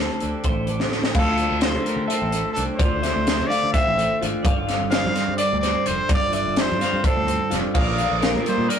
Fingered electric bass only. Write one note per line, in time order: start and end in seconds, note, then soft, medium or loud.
0.23 0.32 D2 medium
0.45 0.82 A1 medium
0.81 1.01 D3 medium
1.15 1.46 D2 medium
1.51 1.76 D2 medium
1.74 1.85 D3 medium
1.96 2.07 D3 medium
2.22 2.42 A1 medium
2.57 2.67 C2 medium
2.79 3.11 D2 medium
3.16 3.41 D2 loud
3.40 3.50 D3 medium
3.63 3.73 D3 medium
3.87 4.07 A1 medium
4.23 4.32 G#1 medium
4.45 4.76 G1 medium
4.81 5.06 G1 medium
5.05 5.15 G2 medium
5.28 5.38 G2 medium
5.53 5.73 D2 medium
5.89 5.98 F1 medium
6.10 6.41 G1 loud
6.47 6.72 G1 medium
6.70 6.80 G2 medium
6.93 7.03 G2 medium
7.17 7.37 D2 medium
7.52 7.62 F1 medium
7.75 8.06 A#1 medium
8.11 8.36 A#1 medium
8.34 8.44 A#2 medium
8.58 8.68 A#2 medium